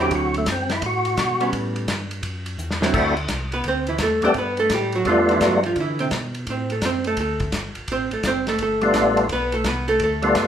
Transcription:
Already playing: tonewheel organ E2
0.00 hollow-body jazz guitar D3 F#3 C4 E4, tonewheel organ G4
0.11 tonewheel organ D2, kick, ride
0.16 tonewheel organ F#4
0.34 tonewheel organ A3, ride
0.46 tonewheel organ F#2, kick, snare, hi-hat pedal, ride
0.52 tonewheel organ C4
0.70 tonewheel organ E4, snare, ride
0.82 tonewheel organ A2, kick, ride
0.86 tonewheel organ F#4
1.05 ride
1.17 tonewheel organ B2, kick, snare, hi-hat pedal, ride
1.40 hollow-body jazz guitar G3 B3 C#4, ride
1.53 tonewheel organ A2, kick, ride
1.76 ride
1.88 tonewheel organ G2, kick, snare, hi-hat pedal, ride
2.11 ride
2.23 tonewheel organ F#2, kick, ride
2.46 ride
2.58 tonewheel organ E2, hi-hat pedal
2.71 snare
2.81 hollow-body jazz guitar D3 F#3 C4 E4, snare
2.94 tonewheel organ D2 A3 C4 D4 E4 F#4, kick, crash
3.17 ride
3.28 tonewheel organ C2, kick, snare, hi-hat pedal, ride
3.52 hollow-body jazz guitar B3 B4, ride
3.64 tonewheel organ D2, kick, ride
3.68 hollow-body jazz guitar C4 C5
3.87 hollow-body jazz guitar E3 E4, ride
3.98 tonewheel organ E2, kick, snare, hi-hat pedal, ride
4.03 hollow-body jazz guitar A3 A4
4.22 tonewheel organ E2 G3 A3 B3 D4 G4, hollow-body jazz guitar C4 C5, ride
4.34 tonewheel organ G2, hollow-body jazz guitar B4, kick, ride
4.39 hollow-body jazz guitar B3
4.57 hollow-body jazz guitar A3 A4, ride
4.70 tonewheel organ A2, kick, snare, hi-hat pedal, ride
4.74 hollow-body jazz guitar G3 G4
4.92 hollow-body jazz guitar F#3 F#4, ride
5.05 tonewheel organ F2 G3 A3 B3 D4 F4, kick, ride
5.09 hollow-body jazz guitar F3 F4
5.29 hollow-body jazz guitar E3 E4, ride
5.41 tonewheel organ G2, kick, snare, hi-hat pedal, ride
5.45 hollow-body jazz guitar F#3 F#4
5.63 hollow-body jazz guitar F3 F4, ride
5.76 tonewheel organ D3, kick, ride
5.80 hollow-body jazz guitar E3 E4
5.99 hollow-body jazz guitar C3 C4, ride
6.11 tonewheel organ B2, kick, snare, hi-hat pedal, ride
6.35 ride
6.47 tonewheel organ A2, hollow-body jazz guitar C4 C5, kick, ride
6.70 hollow-body jazz guitar A3 A4, ride
6.82 tonewheel organ F#2, hollow-body jazz guitar C4 C5, kick, snare, hi-hat pedal, ride
7.04 hollow-body jazz guitar A3 A4, ride
7.17 tonewheel organ D2, hollow-body jazz guitar A3 A4, kick, ride
7.40 kick, ride
7.52 tonewheel organ G1, kick, snare, hi-hat pedal, ride
7.75 tonewheel organ G1, ride
7.88 tonewheel organ A1, hollow-body jazz guitar C4, kick, ride
7.92 hollow-body jazz guitar C5
8.11 tonewheel organ A1, hollow-body jazz guitar A3 A4, ride
8.23 tonewheel organ F#1, kick, snare, hi-hat pedal, ride
8.27 hollow-body jazz guitar C4 C5
8.47 hollow-body jazz guitar A3 A4, snare, ride
8.59 tonewheel organ G1, hollow-body jazz guitar A3 A4, kick, ride
8.81 tonewheel organ G3 A3 B3 D4 F4, ride
8.94 tonewheel organ A1, kick, snare, hi-hat pedal, ride
9.17 ride
9.29 tonewheel organ B1, hollow-body jazz guitar B3 B4, kick, ride
9.52 hollow-body jazz guitar A3 A4, ride
9.64 tonewheel organ C2, hollow-body jazz guitar B3 B4, kick, snare, hi-hat pedal, ride
9.88 hollow-body jazz guitar A3 A4, ride
10.00 tonewheel organ D2, hollow-body jazz guitar A3, kick, ride
10.04 hollow-body jazz guitar A4
10.22 tonewheel organ G3 A3 B3 D4 F4, ride
10.35 tonewheel organ G2, kick, snare, hi-hat pedal, ride

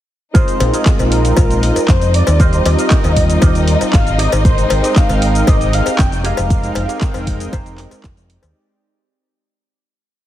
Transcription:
0.34 analog synth pad G#3 C4 D#4 F4 A#4, string section D#4 D#5, clean electric guitar F4 G#4 A#4 D#5, analog synth lead C5, kick, closed hi-hat, cabasa
0.48 closed hi-hat, cabasa
0.60 fingered electric bass A#1, open hi-hat, cowbell
0.73 analog synth pad G#3 C4 D#4 F4 A#4, clean electric guitar F4 G#4 A#4 D#5, closed hi-hat, cabasa
0.86 kick, clap, closed hi-hat, cabasa
0.99 fingered electric bass A#1, closed hi-hat, cowbell, cabasa
1.11 analog synth lead A#4, muted clean electric guitar stroke, open hi-hat
1.25 closed hi-hat, cabasa
1.36 fingered electric bass A#1, clean electric guitar F4 G#4 A#4 F5, kick, closed hi-hat, cowbell, cabasa
1.50 closed hi-hat, cabasa
1.63 analog synth pad G#3 C4 D#4 F4 D5, open hi-hat
1.76 muted fingered electric bass stroke, closed hi-hat, cowbell, cabasa
1.88 fingered electric bass F2, analog synth lead C5, kick, clap, closed hi-hat, cabasa
2.01 muted clean electric guitar stroke, closed hi-hat, cabasa
2.14 analog synth pad G#3 C4 D#4 F4 A#4, analog synth lead D5, open hi-hat
2.27 fingered electric bass D#2, analog synth pad G3 C4 D#4 F4 G4, muted clean electric guitar stroke, closed hi-hat, cowbell, cabasa
2.39 clean electric guitar G4 A#4 C5 D#5, analog synth lead C5, kick, closed hi-hat, cabasa
2.53 closed hi-hat, cabasa
2.66 fingered electric bass D#2, analog synth lead D#5, open hi-hat, cowbell
2.77 analog synth pad G3 C4 D#4 F4 A#4, clean electric guitar G4 A#4 C5 D#5, closed hi-hat, cabasa
2.91 kick, clap, closed hi-hat, cabasa
3.04 fingered electric bass D#2, closed hi-hat, cowbell, cabasa
3.16 muted clean electric guitar stroke, kick, open hi-hat
3.30 closed hi-hat, cabasa
3.41 fingered electric bass D#2, clean electric guitar G4 A#4 C5 D#5, kick, closed hi-hat, cowbell, cabasa
3.55 closed hi-hat, cabasa
3.68 analog synth pad G3 C4 D#4 F4 D#5, open hi-hat
3.81 muted fingered electric bass stroke, closed hi-hat, cowbell, cabasa
3.93 fingered electric bass G#1, analog synth lead F5, kick, clap, closed hi-hat, cabasa
4.06 muted clean electric guitar stroke, closed hi-hat, cabasa
4.18 analog synth pad G#3 C4 D#4 G4 A#4, clean electric guitar G4 G#4 C5 D#5, analog synth lead D#5, open hi-hat
4.32 fingered electric bass G#1, analog synth pad G#3 C4 D#4 A#4 G5, closed hi-hat, cowbell, cabasa
4.45 analog synth lead C5, kick, closed hi-hat, cabasa
4.58 closed hi-hat, cabasa
4.70 fingered electric bass G#1, open hi-hat, cowbell
4.83 analog synth pad G#3 C4 D#4 A#4 G5, clean electric guitar G4 G#4 C5 D#5, closed hi-hat, cabasa
4.96 analog synth lead F5, kick, clap, closed hi-hat, cabasa
5.09 fingered electric bass G#1, closed hi-hat, cowbell, cabasa
5.21 muted clean electric guitar stroke, open hi-hat
5.35 closed hi-hat, cabasa
5.47 fingered electric bass G#1, clean electric guitar G4 G#4 C5 D#5, analog synth lead D#5, kick, closed hi-hat, cowbell, cabasa
5.61 closed hi-hat, cabasa
5.73 analog synth pad G#3 C4 D#4 G4 D#5, analog synth lead F5, open hi-hat
5.86 muted fingered electric bass stroke, closed hi-hat, cowbell, cabasa
5.99 fingered electric bass F1, analog synth lead G5, kick, clap, closed hi-hat, cabasa
6.11 muted clean electric guitar stroke, closed hi-hat, cabasa
6.24 analog synth pad G#3 C4 D#4 G4 A#4, clean electric guitar G4 G#4 A#4 D#5, analog synth lead F5, open hi-hat
6.37 fingered electric bass F1, analog synth pad G#3 C4 D#4 A#4 G5, closed hi-hat, cowbell, cabasa
6.50 kick, closed hi-hat, cabasa
6.63 closed hi-hat, cabasa
6.75 fingered electric bass F1, open hi-hat, cowbell
6.88 analog synth pad G#3 C4 D#4 A#4 G5, clean electric guitar G4 G#4 A#4 D#5, closed hi-hat, cabasa
7.01 kick, clap, closed hi-hat, cabasa
7.14 fingered electric bass F1, closed hi-hat, cowbell, cabasa
7.26 muted clean electric guitar stroke, kick, open hi-hat
7.40 closed hi-hat, cabasa
7.52 fingered electric bass F1, clean electric guitar G4 G#4 A#4 C5, kick, closed hi-hat, cowbell, cabasa
7.66 closed hi-hat, cabasa
7.78 analog synth pad G#3 C4 D#4 G4 A#4, clap, open hi-hat
7.91 muted fingered electric bass stroke, closed hi-hat, cowbell, cabasa
8.04 fingered electric bass F1, kick, clap, closed hi-hat, cabasa
8.16 muted clean electric guitar stroke, closed hi-hat, cabasa
8.30 analog synth pad G#3 C4 D#4 G4 D5, open hi-hat
8.42 fingered electric bass D#2, muted clean electric guitar stroke, closed hi-hat, cowbell, cabasa

